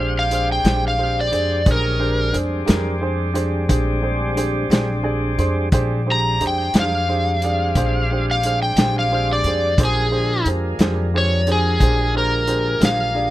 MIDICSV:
0, 0, Header, 1, 6, 480
1, 0, Start_track
1, 0, Tempo, 675676
1, 1186, Time_signature, 12, 3, 24, 8
1, 9450, End_track
2, 0, Start_track
2, 0, Title_t, "Electric slide guitar"
2, 0, Program_c, 0, 29
2, 0, Note_on_c, 0, 77, 71
2, 92, Note_off_c, 0, 77, 0
2, 135, Note_on_c, 0, 77, 69
2, 353, Note_off_c, 0, 77, 0
2, 371, Note_on_c, 0, 79, 64
2, 591, Note_off_c, 0, 79, 0
2, 623, Note_on_c, 0, 77, 66
2, 837, Note_off_c, 0, 77, 0
2, 857, Note_on_c, 0, 74, 66
2, 1191, Note_off_c, 0, 74, 0
2, 1223, Note_on_c, 0, 70, 82
2, 1671, Note_off_c, 0, 70, 0
2, 4345, Note_on_c, 0, 82, 79
2, 4562, Note_off_c, 0, 82, 0
2, 4597, Note_on_c, 0, 79, 73
2, 4808, Note_off_c, 0, 79, 0
2, 4827, Note_on_c, 0, 77, 78
2, 5861, Note_off_c, 0, 77, 0
2, 5905, Note_on_c, 0, 77, 72
2, 6121, Note_off_c, 0, 77, 0
2, 6127, Note_on_c, 0, 79, 80
2, 6352, Note_off_c, 0, 79, 0
2, 6385, Note_on_c, 0, 77, 65
2, 6602, Note_off_c, 0, 77, 0
2, 6626, Note_on_c, 0, 74, 64
2, 6958, Note_off_c, 0, 74, 0
2, 6994, Note_on_c, 0, 68, 75
2, 7438, Note_off_c, 0, 68, 0
2, 7940, Note_on_c, 0, 73, 73
2, 8157, Note_off_c, 0, 73, 0
2, 8183, Note_on_c, 0, 68, 70
2, 8630, Note_off_c, 0, 68, 0
2, 8651, Note_on_c, 0, 70, 66
2, 9103, Note_off_c, 0, 70, 0
2, 9128, Note_on_c, 0, 77, 67
2, 9450, Note_off_c, 0, 77, 0
2, 9450, End_track
3, 0, Start_track
3, 0, Title_t, "Grand piano"
3, 0, Program_c, 1, 0
3, 0, Note_on_c, 1, 62, 40
3, 0, Note_on_c, 1, 67, 34
3, 0, Note_on_c, 1, 68, 37
3, 0, Note_on_c, 1, 72, 50
3, 155, Note_off_c, 1, 62, 0
3, 156, Note_off_c, 1, 67, 0
3, 158, Note_off_c, 1, 72, 0
3, 160, Note_off_c, 1, 68, 0
3, 220, Note_on_c, 1, 62, 41
3, 221, Note_on_c, 1, 67, 36
3, 225, Note_on_c, 1, 68, 41
3, 230, Note_on_c, 1, 72, 48
3, 402, Note_off_c, 1, 62, 0
3, 402, Note_off_c, 1, 67, 0
3, 404, Note_off_c, 1, 68, 0
3, 407, Note_off_c, 1, 72, 0
3, 455, Note_on_c, 1, 62, 47
3, 457, Note_on_c, 1, 67, 44
3, 460, Note_on_c, 1, 68, 42
3, 465, Note_on_c, 1, 72, 49
3, 640, Note_off_c, 1, 62, 0
3, 641, Note_off_c, 1, 67, 0
3, 642, Note_off_c, 1, 68, 0
3, 644, Note_off_c, 1, 72, 0
3, 699, Note_on_c, 1, 62, 46
3, 700, Note_on_c, 1, 67, 43
3, 702, Note_on_c, 1, 72, 52
3, 704, Note_on_c, 1, 68, 44
3, 882, Note_off_c, 1, 62, 0
3, 883, Note_off_c, 1, 67, 0
3, 883, Note_off_c, 1, 72, 0
3, 885, Note_off_c, 1, 68, 0
3, 934, Note_on_c, 1, 62, 40
3, 940, Note_on_c, 1, 68, 42
3, 942, Note_on_c, 1, 67, 42
3, 942, Note_on_c, 1, 72, 48
3, 1120, Note_off_c, 1, 62, 0
3, 1123, Note_off_c, 1, 68, 0
3, 1124, Note_off_c, 1, 67, 0
3, 1124, Note_off_c, 1, 72, 0
3, 1183, Note_on_c, 1, 62, 56
3, 1185, Note_on_c, 1, 67, 52
3, 1186, Note_on_c, 1, 68, 59
3, 1186, Note_on_c, 1, 72, 59
3, 1365, Note_off_c, 1, 62, 0
3, 1366, Note_off_c, 1, 67, 0
3, 1366, Note_off_c, 1, 68, 0
3, 1366, Note_off_c, 1, 72, 0
3, 1414, Note_on_c, 1, 62, 46
3, 1416, Note_on_c, 1, 67, 38
3, 1416, Note_on_c, 1, 68, 42
3, 1419, Note_on_c, 1, 72, 47
3, 1600, Note_off_c, 1, 62, 0
3, 1601, Note_off_c, 1, 67, 0
3, 1602, Note_off_c, 1, 68, 0
3, 1603, Note_off_c, 1, 72, 0
3, 1652, Note_on_c, 1, 62, 49
3, 1657, Note_on_c, 1, 67, 44
3, 1657, Note_on_c, 1, 68, 45
3, 1661, Note_on_c, 1, 72, 51
3, 1840, Note_off_c, 1, 62, 0
3, 1842, Note_off_c, 1, 67, 0
3, 1842, Note_off_c, 1, 68, 0
3, 1844, Note_off_c, 1, 72, 0
3, 1890, Note_on_c, 1, 62, 54
3, 1891, Note_on_c, 1, 67, 52
3, 1894, Note_on_c, 1, 68, 51
3, 1901, Note_on_c, 1, 70, 64
3, 2079, Note_off_c, 1, 62, 0
3, 2080, Note_off_c, 1, 67, 0
3, 2081, Note_off_c, 1, 68, 0
3, 2084, Note_off_c, 1, 70, 0
3, 2139, Note_on_c, 1, 62, 56
3, 2141, Note_on_c, 1, 67, 48
3, 2142, Note_on_c, 1, 68, 54
3, 2150, Note_on_c, 1, 72, 63
3, 2324, Note_off_c, 1, 62, 0
3, 2325, Note_off_c, 1, 67, 0
3, 2325, Note_off_c, 1, 68, 0
3, 2329, Note_off_c, 1, 72, 0
3, 2370, Note_on_c, 1, 62, 66
3, 2374, Note_on_c, 1, 67, 55
3, 2379, Note_on_c, 1, 68, 50
3, 2383, Note_on_c, 1, 72, 66
3, 2559, Note_off_c, 1, 62, 0
3, 2561, Note_off_c, 1, 67, 0
3, 2564, Note_off_c, 1, 68, 0
3, 2566, Note_off_c, 1, 72, 0
3, 2620, Note_on_c, 1, 62, 58
3, 2622, Note_on_c, 1, 67, 53
3, 2624, Note_on_c, 1, 68, 55
3, 2624, Note_on_c, 1, 72, 64
3, 2805, Note_off_c, 1, 62, 0
3, 2806, Note_off_c, 1, 67, 0
3, 2807, Note_off_c, 1, 68, 0
3, 2807, Note_off_c, 1, 72, 0
3, 2854, Note_on_c, 1, 62, 53
3, 2857, Note_on_c, 1, 67, 44
3, 2865, Note_on_c, 1, 68, 45
3, 2867, Note_on_c, 1, 72, 55
3, 3042, Note_off_c, 1, 62, 0
3, 3044, Note_off_c, 1, 67, 0
3, 3048, Note_off_c, 1, 68, 0
3, 3049, Note_off_c, 1, 72, 0
3, 3099, Note_on_c, 1, 62, 54
3, 3104, Note_on_c, 1, 67, 51
3, 3106, Note_on_c, 1, 68, 47
3, 3110, Note_on_c, 1, 72, 58
3, 3285, Note_off_c, 1, 62, 0
3, 3287, Note_off_c, 1, 67, 0
3, 3288, Note_off_c, 1, 68, 0
3, 3290, Note_off_c, 1, 72, 0
3, 3344, Note_on_c, 1, 62, 59
3, 3344, Note_on_c, 1, 67, 57
3, 3352, Note_on_c, 1, 68, 56
3, 3354, Note_on_c, 1, 72, 63
3, 3527, Note_off_c, 1, 62, 0
3, 3527, Note_off_c, 1, 67, 0
3, 3531, Note_off_c, 1, 68, 0
3, 3532, Note_off_c, 1, 72, 0
3, 3574, Note_on_c, 1, 62, 57
3, 3575, Note_on_c, 1, 67, 49
3, 3578, Note_on_c, 1, 68, 58
3, 3578, Note_on_c, 1, 80, 51
3, 3583, Note_on_c, 1, 74, 65
3, 3763, Note_off_c, 1, 62, 0
3, 3763, Note_off_c, 1, 67, 0
3, 3765, Note_off_c, 1, 68, 0
3, 3767, Note_off_c, 1, 74, 0
3, 3807, Note_off_c, 1, 80, 0
3, 3822, Note_on_c, 1, 62, 55
3, 3825, Note_on_c, 1, 67, 50
3, 3830, Note_on_c, 1, 68, 49
3, 3830, Note_on_c, 1, 72, 61
3, 3830, Note_on_c, 1, 84, 49
3, 4007, Note_off_c, 1, 62, 0
3, 4008, Note_off_c, 1, 67, 0
3, 4011, Note_off_c, 1, 68, 0
3, 4011, Note_off_c, 1, 72, 0
3, 4054, Note_off_c, 1, 84, 0
3, 4065, Note_on_c, 1, 62, 69
3, 4071, Note_on_c, 1, 67, 64
3, 4072, Note_on_c, 1, 68, 63
3, 4077, Note_on_c, 1, 72, 78
3, 4248, Note_off_c, 1, 62, 0
3, 4251, Note_off_c, 1, 67, 0
3, 4252, Note_off_c, 1, 68, 0
3, 4254, Note_off_c, 1, 72, 0
3, 4309, Note_on_c, 1, 62, 45
3, 4309, Note_on_c, 1, 67, 46
3, 4313, Note_on_c, 1, 68, 43
3, 4316, Note_on_c, 1, 72, 55
3, 4490, Note_off_c, 1, 62, 0
3, 4490, Note_off_c, 1, 67, 0
3, 4492, Note_off_c, 1, 68, 0
3, 4494, Note_off_c, 1, 72, 0
3, 4551, Note_on_c, 1, 62, 44
3, 4554, Note_on_c, 1, 67, 44
3, 4554, Note_on_c, 1, 68, 47
3, 4556, Note_on_c, 1, 72, 49
3, 4732, Note_off_c, 1, 62, 0
3, 4733, Note_off_c, 1, 67, 0
3, 4733, Note_off_c, 1, 68, 0
3, 4734, Note_off_c, 1, 72, 0
3, 4794, Note_on_c, 1, 62, 50
3, 4794, Note_on_c, 1, 67, 42
3, 4800, Note_on_c, 1, 72, 52
3, 4804, Note_on_c, 1, 68, 43
3, 4973, Note_off_c, 1, 62, 0
3, 4973, Note_off_c, 1, 67, 0
3, 4976, Note_off_c, 1, 72, 0
3, 4978, Note_off_c, 1, 68, 0
3, 5032, Note_on_c, 1, 62, 48
3, 5035, Note_on_c, 1, 67, 41
3, 5037, Note_on_c, 1, 68, 43
3, 5040, Note_on_c, 1, 72, 51
3, 5212, Note_off_c, 1, 62, 0
3, 5213, Note_off_c, 1, 67, 0
3, 5214, Note_off_c, 1, 68, 0
3, 5216, Note_off_c, 1, 72, 0
3, 5280, Note_on_c, 1, 67, 46
3, 5284, Note_on_c, 1, 62, 49
3, 5284, Note_on_c, 1, 68, 48
3, 5289, Note_on_c, 1, 74, 54
3, 5456, Note_off_c, 1, 67, 0
3, 5458, Note_off_c, 1, 62, 0
3, 5458, Note_off_c, 1, 68, 0
3, 5460, Note_off_c, 1, 74, 0
3, 5510, Note_on_c, 1, 62, 56
3, 5510, Note_on_c, 1, 67, 58
3, 5514, Note_on_c, 1, 68, 52
3, 5521, Note_on_c, 1, 72, 69
3, 5691, Note_off_c, 1, 62, 0
3, 5691, Note_off_c, 1, 67, 0
3, 5693, Note_off_c, 1, 68, 0
3, 5696, Note_off_c, 1, 72, 0
3, 5763, Note_on_c, 1, 62, 38
3, 5764, Note_on_c, 1, 68, 39
3, 5768, Note_on_c, 1, 67, 40
3, 5773, Note_on_c, 1, 72, 47
3, 5937, Note_off_c, 1, 62, 0
3, 5938, Note_off_c, 1, 68, 0
3, 5940, Note_off_c, 1, 67, 0
3, 5942, Note_off_c, 1, 72, 0
3, 5998, Note_on_c, 1, 62, 44
3, 6000, Note_on_c, 1, 67, 36
3, 6006, Note_on_c, 1, 68, 42
3, 6010, Note_on_c, 1, 72, 48
3, 6175, Note_off_c, 1, 62, 0
3, 6176, Note_off_c, 1, 67, 0
3, 6179, Note_off_c, 1, 68, 0
3, 6181, Note_off_c, 1, 72, 0
3, 6238, Note_on_c, 1, 67, 40
3, 6239, Note_on_c, 1, 62, 46
3, 6239, Note_on_c, 1, 68, 40
3, 6243, Note_on_c, 1, 72, 50
3, 6415, Note_off_c, 1, 62, 0
3, 6415, Note_off_c, 1, 67, 0
3, 6415, Note_off_c, 1, 68, 0
3, 6417, Note_off_c, 1, 72, 0
3, 6475, Note_on_c, 1, 62, 43
3, 6477, Note_on_c, 1, 67, 41
3, 6479, Note_on_c, 1, 68, 44
3, 6482, Note_on_c, 1, 72, 54
3, 6653, Note_off_c, 1, 62, 0
3, 6654, Note_off_c, 1, 67, 0
3, 6655, Note_off_c, 1, 68, 0
3, 6657, Note_off_c, 1, 72, 0
3, 6717, Note_on_c, 1, 62, 45
3, 6719, Note_on_c, 1, 67, 38
3, 6722, Note_on_c, 1, 68, 41
3, 6728, Note_on_c, 1, 72, 49
3, 6894, Note_off_c, 1, 62, 0
3, 6895, Note_off_c, 1, 67, 0
3, 6896, Note_off_c, 1, 68, 0
3, 6899, Note_off_c, 1, 72, 0
3, 6949, Note_on_c, 1, 62, 57
3, 6952, Note_on_c, 1, 67, 48
3, 6957, Note_on_c, 1, 68, 53
3, 6961, Note_on_c, 1, 72, 70
3, 7130, Note_off_c, 1, 62, 0
3, 7131, Note_off_c, 1, 67, 0
3, 7134, Note_off_c, 1, 68, 0
3, 7136, Note_off_c, 1, 72, 0
3, 7181, Note_on_c, 1, 62, 43
3, 7188, Note_on_c, 1, 67, 42
3, 7188, Note_on_c, 1, 68, 41
3, 7189, Note_on_c, 1, 72, 54
3, 7365, Note_off_c, 1, 62, 0
3, 7369, Note_off_c, 1, 67, 0
3, 7369, Note_off_c, 1, 68, 0
3, 7369, Note_off_c, 1, 72, 0
3, 7428, Note_on_c, 1, 62, 44
3, 7435, Note_on_c, 1, 68, 39
3, 7436, Note_on_c, 1, 67, 43
3, 7442, Note_on_c, 1, 72, 46
3, 7609, Note_off_c, 1, 62, 0
3, 7612, Note_off_c, 1, 68, 0
3, 7613, Note_off_c, 1, 67, 0
3, 7616, Note_off_c, 1, 72, 0
3, 7674, Note_on_c, 1, 62, 58
3, 7675, Note_on_c, 1, 67, 51
3, 7680, Note_on_c, 1, 72, 55
3, 7681, Note_on_c, 1, 68, 51
3, 7851, Note_off_c, 1, 62, 0
3, 7852, Note_off_c, 1, 67, 0
3, 7854, Note_off_c, 1, 72, 0
3, 7855, Note_off_c, 1, 68, 0
3, 7913, Note_on_c, 1, 62, 47
3, 7915, Note_on_c, 1, 67, 42
3, 7918, Note_on_c, 1, 68, 41
3, 7922, Note_on_c, 1, 72, 54
3, 8091, Note_off_c, 1, 62, 0
3, 8091, Note_off_c, 1, 67, 0
3, 8093, Note_off_c, 1, 68, 0
3, 8095, Note_off_c, 1, 72, 0
3, 8146, Note_on_c, 1, 62, 50
3, 8154, Note_on_c, 1, 67, 44
3, 8155, Note_on_c, 1, 68, 44
3, 8155, Note_on_c, 1, 72, 53
3, 8327, Note_off_c, 1, 62, 0
3, 8331, Note_off_c, 1, 67, 0
3, 8331, Note_off_c, 1, 68, 0
3, 8331, Note_off_c, 1, 72, 0
3, 8389, Note_on_c, 1, 62, 44
3, 8396, Note_on_c, 1, 67, 44
3, 8398, Note_on_c, 1, 68, 40
3, 8398, Note_on_c, 1, 72, 51
3, 8568, Note_off_c, 1, 62, 0
3, 8572, Note_off_c, 1, 67, 0
3, 8572, Note_off_c, 1, 72, 0
3, 8573, Note_off_c, 1, 68, 0
3, 8625, Note_on_c, 1, 62, 39
3, 8627, Note_on_c, 1, 67, 38
3, 8631, Note_on_c, 1, 68, 36
3, 8639, Note_on_c, 1, 72, 49
3, 8805, Note_off_c, 1, 62, 0
3, 8807, Note_off_c, 1, 67, 0
3, 8808, Note_off_c, 1, 68, 0
3, 8812, Note_off_c, 1, 72, 0
3, 8858, Note_on_c, 1, 62, 43
3, 8863, Note_on_c, 1, 67, 42
3, 8864, Note_on_c, 1, 68, 39
3, 8866, Note_on_c, 1, 72, 50
3, 9042, Note_off_c, 1, 62, 0
3, 9044, Note_off_c, 1, 67, 0
3, 9045, Note_off_c, 1, 68, 0
3, 9046, Note_off_c, 1, 72, 0
3, 9097, Note_on_c, 1, 62, 47
3, 9097, Note_on_c, 1, 67, 39
3, 9100, Note_on_c, 1, 68, 41
3, 9106, Note_on_c, 1, 72, 48
3, 9281, Note_off_c, 1, 62, 0
3, 9281, Note_off_c, 1, 67, 0
3, 9282, Note_off_c, 1, 68, 0
3, 9285, Note_off_c, 1, 72, 0
3, 9337, Note_on_c, 1, 62, 43
3, 9340, Note_on_c, 1, 67, 44
3, 9346, Note_on_c, 1, 68, 43
3, 9347, Note_on_c, 1, 74, 48
3, 9450, Note_off_c, 1, 62, 0
3, 9450, Note_off_c, 1, 67, 0
3, 9450, Note_off_c, 1, 68, 0
3, 9450, Note_off_c, 1, 74, 0
3, 9450, End_track
4, 0, Start_track
4, 0, Title_t, "Tonewheel organ"
4, 0, Program_c, 2, 16
4, 0, Note_on_c, 2, 56, 57
4, 0, Note_on_c, 2, 60, 53
4, 0, Note_on_c, 2, 62, 56
4, 0, Note_on_c, 2, 67, 58
4, 1155, Note_off_c, 2, 56, 0
4, 1155, Note_off_c, 2, 60, 0
4, 1156, Note_off_c, 2, 62, 0
4, 1156, Note_off_c, 2, 67, 0
4, 1171, Note_on_c, 2, 61, 50
4, 1172, Note_on_c, 2, 56, 47
4, 1176, Note_on_c, 2, 63, 51
4, 1180, Note_on_c, 2, 58, 53
4, 1417, Note_off_c, 2, 56, 0
4, 1418, Note_on_c, 2, 60, 59
4, 1419, Note_off_c, 2, 61, 0
4, 1421, Note_on_c, 2, 62, 57
4, 1422, Note_off_c, 2, 63, 0
4, 1424, Note_off_c, 2, 58, 0
4, 1425, Note_on_c, 2, 56, 64
4, 1426, Note_on_c, 2, 55, 58
4, 4041, Note_off_c, 2, 60, 0
4, 4042, Note_off_c, 2, 62, 0
4, 4044, Note_off_c, 2, 56, 0
4, 4045, Note_off_c, 2, 55, 0
4, 4072, Note_on_c, 2, 60, 60
4, 4077, Note_on_c, 2, 55, 55
4, 4078, Note_on_c, 2, 56, 55
4, 4078, Note_on_c, 2, 62, 57
4, 6923, Note_off_c, 2, 60, 0
4, 6925, Note_off_c, 2, 55, 0
4, 6926, Note_off_c, 2, 56, 0
4, 6926, Note_off_c, 2, 62, 0
4, 6943, Note_on_c, 2, 53, 61
4, 6946, Note_on_c, 2, 56, 53
4, 6946, Note_on_c, 2, 58, 62
4, 6947, Note_on_c, 2, 50, 57
4, 9450, Note_off_c, 2, 50, 0
4, 9450, Note_off_c, 2, 53, 0
4, 9450, Note_off_c, 2, 56, 0
4, 9450, Note_off_c, 2, 58, 0
4, 9450, End_track
5, 0, Start_track
5, 0, Title_t, "Upright bass"
5, 0, Program_c, 3, 32
5, 0, Note_on_c, 3, 34, 88
5, 431, Note_off_c, 3, 34, 0
5, 458, Note_on_c, 3, 34, 72
5, 914, Note_off_c, 3, 34, 0
5, 937, Note_on_c, 3, 41, 71
5, 1162, Note_off_c, 3, 41, 0
5, 1180, Note_on_c, 3, 34, 86
5, 1636, Note_off_c, 3, 34, 0
5, 1667, Note_on_c, 3, 41, 67
5, 1888, Note_off_c, 3, 41, 0
5, 1909, Note_on_c, 3, 41, 85
5, 2601, Note_off_c, 3, 41, 0
5, 2625, Note_on_c, 3, 34, 96
5, 3320, Note_off_c, 3, 34, 0
5, 3339, Note_on_c, 3, 34, 79
5, 3797, Note_off_c, 3, 34, 0
5, 3824, Note_on_c, 3, 41, 70
5, 4048, Note_off_c, 3, 41, 0
5, 4066, Note_on_c, 3, 34, 86
5, 4520, Note_off_c, 3, 34, 0
5, 4550, Note_on_c, 3, 41, 71
5, 4772, Note_off_c, 3, 41, 0
5, 4790, Note_on_c, 3, 41, 75
5, 5482, Note_off_c, 3, 41, 0
5, 5508, Note_on_c, 3, 34, 82
5, 6201, Note_off_c, 3, 34, 0
5, 6225, Note_on_c, 3, 34, 82
5, 6679, Note_off_c, 3, 34, 0
5, 6705, Note_on_c, 3, 41, 76
5, 6928, Note_off_c, 3, 41, 0
5, 6947, Note_on_c, 3, 34, 86
5, 7400, Note_off_c, 3, 34, 0
5, 7426, Note_on_c, 3, 41, 72
5, 7648, Note_off_c, 3, 41, 0
5, 7666, Note_on_c, 3, 41, 81
5, 8358, Note_off_c, 3, 41, 0
5, 8388, Note_on_c, 3, 34, 90
5, 9077, Note_off_c, 3, 34, 0
5, 9097, Note_on_c, 3, 34, 72
5, 9450, Note_off_c, 3, 34, 0
5, 9450, End_track
6, 0, Start_track
6, 0, Title_t, "Drums"
6, 221, Note_on_c, 9, 42, 55
6, 292, Note_off_c, 9, 42, 0
6, 459, Note_on_c, 9, 42, 65
6, 470, Note_on_c, 9, 38, 95
6, 530, Note_off_c, 9, 42, 0
6, 541, Note_off_c, 9, 38, 0
6, 942, Note_on_c, 9, 42, 53
6, 1013, Note_off_c, 9, 42, 0
6, 1179, Note_on_c, 9, 42, 73
6, 1182, Note_on_c, 9, 36, 104
6, 1250, Note_off_c, 9, 42, 0
6, 1253, Note_off_c, 9, 36, 0
6, 1663, Note_on_c, 9, 42, 54
6, 1734, Note_off_c, 9, 42, 0
6, 1900, Note_on_c, 9, 42, 80
6, 1912, Note_on_c, 9, 38, 101
6, 1972, Note_off_c, 9, 42, 0
6, 1983, Note_off_c, 9, 38, 0
6, 2381, Note_on_c, 9, 42, 56
6, 2453, Note_off_c, 9, 42, 0
6, 2623, Note_on_c, 9, 36, 74
6, 2624, Note_on_c, 9, 42, 77
6, 2694, Note_off_c, 9, 36, 0
6, 2695, Note_off_c, 9, 42, 0
6, 3106, Note_on_c, 9, 42, 56
6, 3177, Note_off_c, 9, 42, 0
6, 3347, Note_on_c, 9, 42, 61
6, 3359, Note_on_c, 9, 38, 95
6, 3419, Note_off_c, 9, 42, 0
6, 3430, Note_off_c, 9, 38, 0
6, 3826, Note_on_c, 9, 42, 46
6, 3897, Note_off_c, 9, 42, 0
6, 4063, Note_on_c, 9, 42, 72
6, 4065, Note_on_c, 9, 36, 96
6, 4134, Note_off_c, 9, 42, 0
6, 4136, Note_off_c, 9, 36, 0
6, 4551, Note_on_c, 9, 42, 48
6, 4622, Note_off_c, 9, 42, 0
6, 4786, Note_on_c, 9, 42, 72
6, 4798, Note_on_c, 9, 38, 94
6, 4857, Note_off_c, 9, 42, 0
6, 4869, Note_off_c, 9, 38, 0
6, 5270, Note_on_c, 9, 42, 48
6, 5341, Note_off_c, 9, 42, 0
6, 5508, Note_on_c, 9, 42, 75
6, 5509, Note_on_c, 9, 36, 70
6, 5579, Note_off_c, 9, 42, 0
6, 5580, Note_off_c, 9, 36, 0
6, 5991, Note_on_c, 9, 42, 61
6, 6062, Note_off_c, 9, 42, 0
6, 6227, Note_on_c, 9, 42, 73
6, 6239, Note_on_c, 9, 38, 88
6, 6298, Note_off_c, 9, 42, 0
6, 6310, Note_off_c, 9, 38, 0
6, 6706, Note_on_c, 9, 42, 47
6, 6777, Note_off_c, 9, 42, 0
6, 6948, Note_on_c, 9, 36, 95
6, 6948, Note_on_c, 9, 42, 69
6, 7019, Note_off_c, 9, 36, 0
6, 7019, Note_off_c, 9, 42, 0
6, 7427, Note_on_c, 9, 42, 51
6, 7498, Note_off_c, 9, 42, 0
6, 7665, Note_on_c, 9, 42, 63
6, 7676, Note_on_c, 9, 38, 92
6, 7736, Note_off_c, 9, 42, 0
6, 7747, Note_off_c, 9, 38, 0
6, 8146, Note_on_c, 9, 42, 48
6, 8217, Note_off_c, 9, 42, 0
6, 8385, Note_on_c, 9, 36, 74
6, 8386, Note_on_c, 9, 42, 73
6, 8456, Note_off_c, 9, 36, 0
6, 8457, Note_off_c, 9, 42, 0
6, 8861, Note_on_c, 9, 42, 53
6, 8932, Note_off_c, 9, 42, 0
6, 9102, Note_on_c, 9, 42, 73
6, 9114, Note_on_c, 9, 38, 93
6, 9173, Note_off_c, 9, 42, 0
6, 9185, Note_off_c, 9, 38, 0
6, 9450, End_track
0, 0, End_of_file